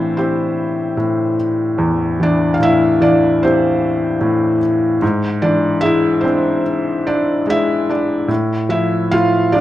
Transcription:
0.00 0.97 A2 medium
0.00 2.20 E3 soft
0.00 0.14 C4 medium
0.00 2.23 D4 medium
0.00 0.19 E4 medium
0.00 0.15 C5 medium
0.00 2.23 D5 medium
0.00 2.63 E5 medium
0.17 1.35 C4 soft
0.17 1.36 E4 soft
0.17 1.35 G4 soft
0.17 1.35 C5 medium
0.97 2.57 A2 soft
1.78 4.98 E2 medium
2.20 2.99 E3 soft
2.20 2.53 D4 medium
2.20 2.57 D5 medium
2.54 2.61 F5 medium
2.60 4.17 A2 soft
2.60 3.04 E5 medium
2.64 3.00 E4 medium
3.00 4.57 E3 soft
3.00 3.39 D4 medium
3.00 3.43 D5 medium
3.43 4.59 C4 soft
3.43 4.59 E4 soft
3.43 4.59 G4 soft
3.43 4.59 C5 medium
4.21 4.99 A2 medium
5.02 8.25 G#2 medium
5.42 7.02 E3 soft
5.42 5.81 D4 medium
5.42 5.84 D5 medium
5.81 7.43 G#3 medium
5.81 6.24 E5 loud
5.86 6.22 E4 medium
6.21 6.62 C4 medium
6.21 7.06 D4 medium
6.21 6.60 C5 medium
7.07 7.45 D4 medium
7.07 7.49 D5 medium
7.47 8.27 G#3 medium
7.47 7.87 E4 medium
7.47 7.91 E5 medium
7.89 8.27 D4 medium
7.89 8.28 D5 medium
8.28 9.10 A2 medium
8.69 9.51 F3 soft
8.69 9.09 E4 medium
8.69 9.13 E5 medium
9.11 9.61 A2 soft
9.11 9.52 F4 medium
9.11 9.55 F5 medium
9.52 9.61 F3 soft
9.52 9.61 D4 medium
9.52 9.61 D5 medium

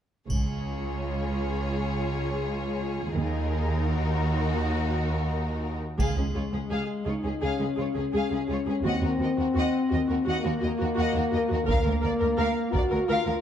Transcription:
0.29 3.10 C#2 soft
0.29 0.97 C#2 soft
0.29 3.10 F4 soft
0.29 3.81 G#4 soft
0.29 3.10 C#5 soft
0.29 taiko soft
0.29 triangle soft
3.14 5.79 D#2 medium
3.14 3.81 D#2 soft
3.14 5.75 D#4 medium
3.14 5.75 A#4 medium
3.86 5.80 F#4 medium
5.98 6.15 C#2 soft
5.98 6.06 C#2 soft
5.98 7.03 G#3 medium
5.98 6.15 G#4 soft
5.98 6.16 G#4 soft
5.98 6.16 F5 soft
5.98 taiko soft
5.98 triangle soft
6.16 6.24 C#2 soft
6.16 6.25 C#4 soft
6.16 6.24 G#4 soft
6.34 6.42 C#2 soft
6.34 6.43 F4 soft
6.34 6.41 G#4 soft
6.34 6.43 C#5 soft
6.52 6.60 C#2 soft
6.52 6.60 C#4 soft
6.52 6.60 G#4 soft
6.70 6.78 C#2 soft
6.70 6.87 G#4 soft
6.70 6.88 F5 soft
7.05 7.14 C#2 soft
7.05 7.43 D#4 soft
7.05 7.13 F4 soft
7.05 7.13 G#4 soft
7.05 7.14 C#5 soft
7.23 7.31 C#2 soft
7.23 7.31 C#4 soft
7.23 7.31 G#4 soft
7.23 7.33 G#4 soft
7.41 7.50 C#2 soft
7.41 8.85 C#4 soft
7.41 7.57 G#4 soft
7.41 7.59 G#4 soft
7.41 7.59 F5 soft
7.58 7.68 C#2 soft
7.58 7.67 C#4 soft
7.58 7.66 G#4 soft
7.58 7.68 G#4 soft
7.76 7.85 C#2 soft
7.76 7.85 F4 soft
7.76 7.83 G#4 soft
7.80 7.87 C#5 soft
7.94 8.03 C#2 soft
7.94 8.03 C#4 soft
7.94 8.02 G#4 soft
7.94 8.05 G#4 soft
8.12 8.21 C#2 soft
8.12 8.29 G#4 soft
8.12 8.31 G#4 soft
8.12 8.31 F5 soft
8.30 8.39 C#2 soft
8.30 8.39 C#4 soft
8.30 8.37 G#4 soft
8.35 8.41 G#4 soft
8.48 8.57 C#2 soft
8.48 8.57 F4 soft
8.48 8.55 G#4 soft
8.52 8.58 C#5 soft
8.66 8.74 C#2 soft
8.66 8.75 C#4 soft
8.66 8.73 G#4 soft
8.70 8.76 G#4 soft
8.83 9.01 D#2 medium
8.83 8.92 D#2 soft
8.83 10.26 C4 medium
8.83 9.00 F#4 soft
8.83 9.02 D#5 soft
8.88 9.03 F#5 soft
9.01 9.09 D#2 soft
9.01 9.09 F#4 soft
9.01 9.10 F#4 soft
9.01 9.11 A#4 soft
9.19 9.27 D#2 soft
9.19 9.26 F#4 soft
9.19 9.28 A#4 soft
9.19 9.29 D#5 soft
9.37 9.45 D#2 soft
9.37 9.44 F#4 soft
9.37 9.47 F#4 soft
9.37 9.47 A#4 soft
9.54 9.63 D#2 medium
9.54 9.71 F#4 soft
9.54 9.73 F#5 soft
9.59 9.74 D#5 medium
9.89 9.99 D#2 soft
9.89 9.96 F#4 soft
9.89 9.99 D#5 soft
9.94 10.01 A#4 soft
10.07 10.16 D#2 soft
10.07 10.14 F#4 soft
10.07 10.17 A#4 soft
10.11 10.18 F#4 soft
10.24 10.34 D#2 medium
10.24 10.41 F#4 medium
10.24 10.44 F#5 medium
10.28 11.66 A#3 medium
10.28 10.44 D#5 medium
10.43 10.52 D#2 soft
10.43 10.50 F#4 soft
10.43 10.52 F#4 soft
10.43 10.52 A#4 soft
10.60 10.69 D#2 soft
10.60 10.67 F#4 soft
10.60 10.69 D#5 soft
10.65 10.72 A#4 soft
10.78 10.88 D#2 soft
10.78 10.85 F#4 soft
10.78 10.87 A#4 soft
10.83 10.89 F#4 soft
10.95 11.05 D#2 medium
10.95 11.11 F#4 medium
10.95 11.14 F#5 medium
11.01 11.16 D#5 medium
11.12 11.22 D#2 soft
11.12 11.20 F#4 soft
11.16 11.25 F#4 medium
11.16 11.23 A#4 medium
11.31 11.40 D#2 soft
11.31 11.38 F#4 soft
11.31 11.40 D#5 soft
11.37 11.43 A#4 medium
11.48 11.58 D#2 soft
11.48 11.55 F#4 medium
11.48 11.58 A#4 medium
11.54 11.60 F#4 medium
11.66 11.84 D2 medium
11.66 11.75 D2 medium
11.66 12.72 A#3 medium
11.66 11.82 A#4 soft
11.66 11.85 F5 medium
11.66 taiko medium
11.70 11.86 F5 medium
11.83 11.93 D2 soft
11.83 11.90 A#4 soft
11.83 11.93 A#4 soft
11.90 11.96 A#4 soft
12.01 12.10 D2 soft
12.01 12.09 A#4 soft
12.01 12.11 D5 soft
12.06 12.13 D5 soft
12.20 12.28 D2 soft
12.20 12.27 A#4 soft
12.24 12.30 A#4 soft
12.37 12.45 D2 medium
12.37 12.54 A#4 medium
12.37 12.54 F5 medium
12.42 12.57 F5 medium
12.72 12.81 D2 soft
12.72 13.09 F#4 medium
12.72 12.80 A#4 soft
12.72 12.80 D5 soft
12.72 taiko soft
12.78 12.84 D5 soft
12.90 12.98 D2 soft
12.90 12.97 A#4 soft
12.90 12.99 A#4 soft
12.95 13.02 A#4 soft
13.08 13.16 D2 medium
13.08 13.41 F4 medium
13.08 13.24 A#4 medium
13.08 13.26 F5 medium
13.08 13.27 F5 medium
13.25 13.34 D2 soft
13.25 13.33 A#4 soft
13.25 13.34 A#4 soft
13.25 13.36 A#4 soft

